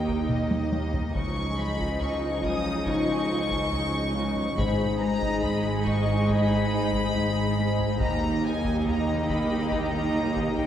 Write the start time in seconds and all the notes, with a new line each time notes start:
Already playing: D#2 D#3 A#3 D#4 G4 D#5 G5 A#5
0.08 taiko
0.29 D#4 D#5, taiko mid
0.51 taiko high
0.72 D#3 C#5, taiko high
0.94 taiko low
1.14 C#2 C#3 F3 D#4 F4 G#4 D#5 G#5 C#6, taiko
1.58 C#4 B5
1.80 taiko
2.01 C#4 C#6, taiko low
2.43 C#3 D#6, taiko
2.85 C#3 D#4 D#5 C#6, taiko
3.30 C#3
3.51 taiko
3.72 C#4, taiko low
4.15 C#3 C#4 C#5
4.36 taiko low
4.57 G#1 G#2 G#3 D#4 G#4 D#5 G#5 B5, taiko
5.00 G#3 B4 A#5
5.22 taiko
5.43 G#3 B5, taiko low
5.85 G#2 C#6, taiko
6.28 G#2 B5, taiko
6.72 G#2
6.93 taiko
7.15 G#3, taiko low
7.58 G#2
7.79 taiko low
8.00 D#2 D#3 A#3 D#4 G4 D#5 A#5, taiko
8.08 D#3
8.23 D#3
8.31 D#3
8.38 D#3
8.44 D#3 D#4 G#5
8.61 D#3, taiko
8.69 D#3
8.84 D#3 D#4 A#5, taiko low
8.91 D#3
8.99 D#3
9.06 D#3
9.14 D#3
9.29 D#3 B5, taiko
9.36 D#3
9.44 D#3
9.58 D#3
9.66 D#3
9.72 D#3 A#5, taiko
9.80 D#3
9.95 D#3
10.03 D#3
10.16 D#3
10.25 D#3
10.33 D#3, taiko
10.41 D#3
10.56 D#3 D#4 G5, taiko low
10.63 D#3